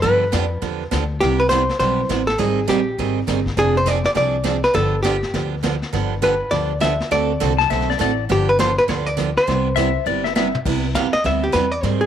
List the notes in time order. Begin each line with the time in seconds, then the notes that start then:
0.02 G2 D3 F3 B3 D4 G4 B4, brush sweep, kick, snare
0.32 F2 D3 F3 B3 D4 G4, kick, snare, hi-hat pedal
0.62 E2 D3 F3 B3 D4 G4, brush sweep, kick, snare
0.91 D2 D3 F3 B3 D4 G4, kick, snare, hi-hat pedal
1.21 C2 C3 G3 B3 E4 G4, brush sweep, kick, snare
1.40 B4
1.49 C3 G3 B3 E4 G4 C5, kick, snare, hi-hat pedal
1.69 snare
1.79 B1 C3 G3 B3 E4 G4 C5, brush sweep, kick, snare
2.09 A1 C3 G3 B3 E4 G4, kick, snare, hi-hat pedal
2.27 A4, snare
2.38 G#1 D#3 G3 C4 D#4 G#4, brush sweep, kick, snare
2.67 A#1 D#3 G3 C4 D#4 G4 G#4, kick, snare, hi-hat pedal
2.98 G#1 D#3 G3 C4 D#4 G#4, brush sweep, kick, snare
3.27 G1 D#3 G3 C4 D#4 G#4, kick, snare, hi-hat pedal
3.46 kick, snare
3.57 F1 F3 C4 D4 G#4, brush sweep, kick, snare
3.77 C5
3.86 F3 C4 D4 G#4 D5, kick, snare, hi-hat pedal
4.04 D5, snare
4.15 C2 F3 C4 D4 G#4 D5, brush sweep, kick, snare
4.44 F3 C4 D4 G#4, kick, snare, hi-hat pedal
4.64 B4, snare
4.74 G1 D3 F3 B3 D4 G4 A4, brush sweep, kick, snare
5.03 D3 F3 B3 D4 G4, kick, snare, hi-hat pedal
5.23 snare
5.34 D2 D3 F3 B3 D4 G4, brush sweep, kick, snare
5.63 D3 F3 B3 D4 G4, kick, snare, hi-hat pedal
5.82 snare
5.93 G1 D3 F3 B3 D4 G4, brush sweep, kick, snare
6.22 D3 F3 B3 D4 G4 B4, kick, snare, hi-hat pedal
6.51 D2 D3 F3 B3 D4 G4 D5, brush sweep, kick, snare
6.80 D3 F3 B3 D4 G4 E5, kick, snare, hi-hat pedal
7.00 snare
7.11 D2 D3 A3 C4 F#4 A4 D5, brush sweep, kick, snare
7.40 C2 D3 A3 C4 F#4 A4, kick, snare, hi-hat pedal
7.59 A5, snare
7.70 B1 D3 A3 C4 F#4 A4 E5, brush sweep, kick, snare
7.81 snare
7.90 D5, snare
7.99 A1 D3 A3 C4 F#4 A4 D5, kick, snare, hi-hat pedal
8.29 G1 D3 F3 B3 D4 G4, brush sweep, kick, snare
8.49 B4
8.59 D3 F3 B3 D4 G4 C5, kick, snare, hi-hat pedal
8.78 B4, snare
8.88 D2 D3 F3 B3 D4 G4 C5, brush sweep, kick, snare
9.06 D5
9.17 D3 F3 B3 D4 G4, kick, snare, hi-hat pedal
9.37 C5, snare
9.47 C2 C3 G3 B3 E4 G4, brush sweep, kick, snare
9.76 C3 G3 B3 E4 G4 E5, kick, snare, hi-hat pedal
10.06 G1 C3 G3 B3 E4 G4 D5
10.24 E5, snare
10.35 C3 G3 B3 E4 G4 E5, snare, hi-hat pedal
10.55 mid tom
10.65 C2 C3 G3 B3 E4 G4, brush sweep, kick, snare, crash
10.95 E2 C3 G3 B3 E4 G4 F5, kick, snare, hi-hat pedal
11.13 D#5, muted upright bass stroke, snare
11.24 D2 C3 G3 B3 E4 G4 E5, brush sweep, kick, snare
11.44 G4
11.52 E2 C3 G3 B3 E4 G4 B4, kick, snare, hi-hat pedal
11.71 D5
11.83 G#2 D#3 G3 C4 D#4 G#4 C5, brush sweep, kick, snare
12.01 G#4